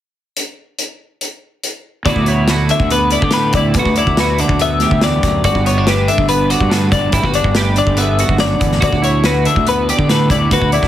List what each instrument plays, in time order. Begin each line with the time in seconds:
0.37 closed hi-hat
0.79 closed hi-hat
1.21 closed hi-hat
1.64 closed hi-hat
2.05 fingered electric bass D2, clean electric guitar D2 D3 B3 E4 D5, kick, closed hi-hat
2.09 clean electric guitar F#4
2.16 fingered electric bass D2, kick
2.26 clean electric guitar E4 C#5, closed hi-hat
2.48 clean electric guitar F#4 B4, snare, closed hi-hat
2.69 clean electric guitar D3 E5, closed hi-hat
2.80 fingered electric bass D2, kick
2.90 clean electric guitar B3 B4, closed hi-hat
3.11 clean electric guitar E4 D5, closed hi-hat
3.22 fingered electric bass D3, clean electric guitar G4, kick
3.31 clean electric guitar B4, snare, closed hi-hat
3.35 clean electric guitar A2
3.53 fingered electric bass D2, clean electric guitar D5, kick, closed hi-hat
3.57 clean electric guitar E4
3.74 fingered electric bass D2, clean electric guitar D2 B4, kick, closed hi-hat
3.79 clean electric guitar F#4
3.85 fingered electric bass D2, kick
3.96 clean electric guitar E4 D5, closed hi-hat
4.06 fingered electric bass D2, kick
4.17 clean electric guitar F#4 B4, snare, closed hi-hat
4.38 clean electric guitar D3 D5, closed hi-hat
4.48 fingered electric bass D2, kick
4.59 clean electric guitar B3 E5, closed hi-hat
4.80 clean electric guitar G4, snare, closed hi-hat
4.91 fingered electric bass D2, kick
5.01 clean electric guitar E2 D5, snare, closed hi-hat
5.23 fingered electric bass D2, clean electric guitar F#2, kick, snare, closed hi-hat
5.44 fingered electric bass G1, clean electric guitar G2 F#4 D5, kick, closed hi-hat
5.55 fingered electric bass G1, kick
5.66 clean electric guitar B3 C#5, closed hi-hat
5.78 clean electric guitar D4
5.87 clean electric guitar G4 B4, snare, closed hi-hat
6.08 clean electric guitar D3 E5, closed hi-hat
6.18 fingered electric bass G1, kick
6.29 clean electric guitar B3 B4, closed hi-hat
6.50 clean electric guitar F#4 D5, closed hi-hat
6.60 fingered electric bass G2, kick
6.70 clean electric guitar D3 B4, snare, closed hi-hat
6.92 fingered electric bass G1, clean electric guitar D4 D5, kick, closed hi-hat
7.12 fingered electric bass G1, clean electric guitar G2 E4 B4, kick, closed hi-hat
7.23 fingered electric bass G1, clean electric guitar F#4, kick
7.34 clean electric guitar D4 D5, closed hi-hat
7.44 fingered electric bass G1, kick
7.55 clean electric guitar G4 B4, snare, closed hi-hat
7.76 clean electric guitar D3 D5, closed hi-hat
7.87 fingered electric bass G1, kick
7.97 clean electric guitar B3 E5, closed hi-hat
8.19 clean electric guitar F#4, closed hi-hat
8.28 fingered electric bass G1, kick
8.38 clean electric guitar F#2 D5, snare, closed hi-hat
8.60 fingered electric bass G1, clean electric guitar E2, kick, closed hi-hat
8.72 snare
8.80 clean electric guitar D2 F#4 D5, fingered electric bass D2, kick, closed hi-hat
8.92 fingered electric bass D2, kick
9.02 clean electric guitar E4 C#5, closed hi-hat
9.24 clean electric guitar F#4 B4, snare, closed hi-hat
9.45 clean electric guitar D3 E5, closed hi-hat
9.56 fingered electric bass D2, kick
9.67 clean electric guitar B3 B4, closed hi-hat
9.89 clean electric guitar G4 D5, closed hi-hat
9.98 fingered electric bass D3, kick
10.09 clean electric guitar A2 B4, snare, closed hi-hat
10.30 fingered electric bass D2, clean electric guitar E4 D5, kick, closed hi-hat
10.51 fingered electric bass D2, clean electric guitar D2 F#4 B4, kick, closed hi-hat
10.62 fingered electric bass D2, kick
10.72 clean electric guitar E4 D5, closed hi-hat
10.82 fingered electric bass D2, kick, snare